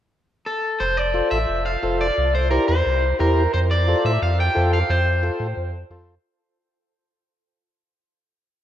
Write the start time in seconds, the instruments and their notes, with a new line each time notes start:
0.46 clean electric guitar A4
0.80 sub bass F1, clean electric guitar C5
0.97 clean electric guitar D5
1.14 transistor combo organ F4 A4 C5
1.31 sub bass A1, clean electric guitar E5
1.49 sub bass F1
1.66 clean electric guitar F5
1.83 sub bass F1, transistor combo organ F4 A4 C5
2.01 clean electric guitar D5
2.18 sub bass C2
2.35 clean electric guitar C5
2.51 transistor combo organ E4 G4 C5, clean electric guitar A#4
2.68 sub bass E2, clean electric guitar C5
2.86 sub bass C2
3.19 sub bass E2, transistor combo organ E4 G4 C5, clean electric guitar A#4
3.54 sub bass F2, clean electric guitar C5
3.71 clean electric guitar D5
3.87 transistor combo organ F4 A4 C5
4.05 sub bass A2, clean electric guitar E5
4.22 sub bass F2, clean electric guitar F5
4.40 clean electric guitar G5
4.55 sub bass F2, transistor combo organ F4 A4 C5
4.73 clean electric guitar F5
4.90 sub bass F2, clean electric guitar C5
5.23 transistor combo organ F4 A4 C5
5.40 sub bass A2
5.57 sub bass F2
5.90 sub bass F2, transistor combo organ F4 A4 C5